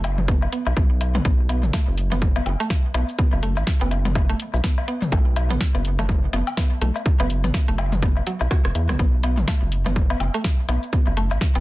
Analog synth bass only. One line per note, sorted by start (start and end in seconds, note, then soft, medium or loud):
0.00 0.47 F#1 loud
0.67 0.73 B1 medium
0.77 1.20 B1 medium
1.25 1.65 B1 loud
1.63 1.70 A1 medium
1.87 2.41 F#1 loud
2.46 2.55 F#1 medium
2.94 3.04 B1 medium
3.33 3.58 F#1 medium
3.57 3.64 A1 medium
3.81 4.34 F#1 loud
4.54 4.60 B1 medium
5.12 5.52 B1 loud
5.50 5.57 A1 medium
5.75 6.28 F#1 loud
6.33 6.43 F#1 medium
6.81 6.91 B1 medium
7.20 7.45 F#1 loud
7.44 7.51 A1 medium
7.68 8.21 F#1 loud
8.41 8.48 B1 medium
8.65 8.72 F#1 loud
8.75 8.91 E2 loud
8.89 8.96 B1 medium
8.99 9.39 B1 medium
9.38 9.44 A1 medium
9.62 10.15 F#1 loud
10.20 10.30 F#1 medium
10.69 10.78 B1 medium
11.07 11.33 F#1 loud
11.31 11.38 A1 medium
11.55 11.60 F#1 loud